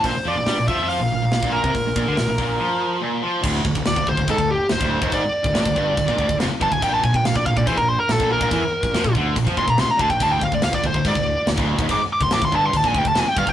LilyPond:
<<
  \new Staff \with { instrumentName = "Lead electric guitar" } { \time 4/4 \key bes \lydian \tempo 4 = 142 c''8 d''8~ \tuplet 3/2 { d''8. e''8 e''16 } f''4. bes'8~ | bes'2. r4 | r4 d''8 c''8 a'8 g'8 c''4 | d''2. r8 a''16 gis''16 |
g''16 a''16 gis''16 g''16 f''16 d''16 f''16 d''16 c''16 bes'16 c''16 bes'16 a'8 bes'8~ | bes'4. r4 c'''16 bes''16 c'''16 bes''16 a''16 g''16 | a''16 g''16 f''16 d''16 f''16 d''16 c''8 d''4 r4 | d'''16 r16 d'''16 c'''16 d'''16 c'''16 a''16 c'''16 a''16 gis''16 g''16 a''16 gis''16 g''16 f''16 g''16 | }
  \new Staff \with { instrumentName = "Distorted electric guitar" } { \clef bass \time 4/4 \key bes \lydian bes,16 r16 f16 bes,16 g16 bes,16 f16 f8 bes,16 bes,16 bes,16 bes,16 bes,8 c16 | bes,16 bes,16 bes,16 d16 bes,16 bes,16 bes,8 f4 bes,8 f8 | d,8 d,16 d,16 d,16 d,16 d,16 d,16 gis,16 d,8 r16 d,16 d,8 ees,16 | gis,16 r8 d,16 a,16 d,16 g,8 d,16 bes,16 d,16 d,16 f,16 r16 g,16 d,16 |
bes,8 bes,16 bes,16 bes,16 bes,16 bes,16 bes,16 e16 bes,8 r16 bes,16 bes,8 bes,16 | e16 r8 bes,16 f16 bes,16 d8 bes,16 f16 bes,16 bes,16 c16 r16 d16 bes,16 | d,8 d,16 d,16 d,16 d,16 d,16 d,16 gis,16 d,8 r16 d,16 d,8 ees,16 | gis,16 r8 d,16 a,16 d,16 g,8 d,16 bes,16 d,16 d,16 f,16 r16 g,16 d,16 | }
  \new Staff \with { instrumentName = "Distorted electric guitar" } { \clef bass \time 4/4 \key bes \lydian bes,16 r16 f16 bes,16 g16 bes,16 f16 f8 bes,16 bes,16 bes,16 bes,16 bes,8 c16 | bes,16 bes,16 bes,16 d16 bes,16 bes,16 bes,8 f4 bes,8 f8 | d,8 d,16 d,16 d,16 d,16 d,16 d,16 gis,16 d,8 r16 d,16 d,8 ees,16 | gis,16 r8 d,16 a,16 d,16 g,8 d,16 bes,16 d,16 d,16 f,16 r16 g,16 d,16 |
bes,8 bes,16 bes,16 bes,16 bes,16 bes,16 bes,16 e16 bes,8 r16 bes,16 bes,8 bes,16 | e16 r8 bes,16 f16 bes,16 d8 bes,16 f16 bes,16 bes,16 c16 r16 d16 bes,16 | d,8 d,16 d,16 d,16 d,16 d,16 d,16 gis,16 d,8 r16 d,16 d,8 ees,16 | gis,16 r8 d,16 a,16 d,16 g,8 d,16 bes,16 d,16 d,16 f,16 r16 g,16 d,16 | }
  \new Staff \with { instrumentName = "Distorted electric guitar" } { \clef bass \time 4/4 \key bes \lydian bes,16 r16 f16 bes,16 g16 bes,16 f16 f8 bes,16 bes,16 bes,16 bes,16 bes,8 c16 | bes,16 bes,16 bes,16 d16 bes,16 bes,16 bes,8 f4 bes,8 f8 | d,8 d,16 d,16 d,16 d,16 d,16 d,16 gis,16 d,8 r16 d,16 d,8 ees,16 | gis,16 r8 d,16 a,16 d,16 g,8 d,16 bes,16 d,16 d,16 f,16 r16 g,16 d,16 |
bes,8 bes,16 bes,16 bes,16 bes,16 bes,16 bes,16 e16 bes,8 r16 bes,16 bes,8 bes,16 | e16 r8 bes,16 f16 bes,16 d8 bes,16 f16 bes,16 bes,16 c16 r16 d16 bes,16 | d,8 d,16 d,16 d,16 d,16 d,16 d,16 gis,16 d,8 r16 d,16 d,8 ees,16 | gis,16 r8 d,16 a,16 d,16 g,8 d,16 bes,16 d,16 d,16 f,16 r16 g,16 d,16 | }
  \new Staff \with { instrumentName = "Fingered electric bass" } { \clef bass \time 4/4 \key bes \lydian bes,,16 r16 f,16 bes,,16 g,16 bes,,16 f,16 f,8 bes,,16 bes,,16 bes,,16 bes,,16 bes,,8 c,16 | bes,,16 bes,,16 bes,,16 d,16 bes,,16 bes,,16 bes,,8 r2 | d,,8 d,,16 d,,16 d,,16 d,,16 d,,16 d,,16 gis,,16 d,,8 r16 d,,16 d,,8 ees,,16 | gis,,16 r8 d,,16 a,,16 d,,16 g,,8 d,,16 bes,,16 d,,16 d,,16 f,,16 r16 g,,16 d,,16 |
bes,,8 bes,,16 bes,,16 bes,,16 bes,,16 bes,,16 bes,,16 e,16 bes,,8 r16 bes,,16 bes,,8 bes,,16 | e,16 r8 bes,,16 f,16 bes,,16 d,8 bes,,16 f,16 bes,,16 bes,,16 c,16 r16 d,16 bes,,16 | d,,8 d,,16 d,,16 d,,16 d,,16 d,,16 d,,16 gis,,16 d,,8 r16 d,,16 d,,8 ees,,16 | gis,,16 r8 d,,16 a,,16 d,,16 g,,8 d,,16 bes,,16 d,,16 d,,16 f,,16 r16 g,,16 d,,16 | }
  \new DrumStaff \with { instrumentName = "Drums" } \drummode { \time 4/4 <hho bd>4 <hho sn>8 bd8 hho4 <hho sn>16 bd8 bd16 | <hho bd>8 bd8 <hho sn>8 bd8 r4 r4 | <cymc bd>8 bd16 bd16 <cymc sn>16 bd16 bd16 bd16 <cymc bd>16 bd8. <cymc sn>16 bd8 bd16 | <cymc bd>8. bd16 <cymc sn>16 bd16 bd8 <cymc bd>16 bd16 bd16 bd16 <cymc sn>8 bd16 bd16 |
<cymc bd>8 bd16 bd16 <cymc sn>16 bd16 bd16 bd16 <cymc bd>16 bd8. <cymc sn>16 bd8 bd16 | <cymc bd>8. bd16 <cymc sn>16 bd16 bd8 <cymc bd>16 bd16 bd16 bd16 <cymc sn>8 bd16 bd16 | <cymc bd>8 bd16 bd16 <cymc sn>16 bd16 bd16 bd16 <cymc bd>16 bd8. <cymc sn>16 bd8 bd16 | <cymc bd>8. bd16 <cymc sn>16 bd16 bd8 <cymc bd>16 bd16 bd16 bd16 <cymc sn>8 bd16 bd16 | }
>>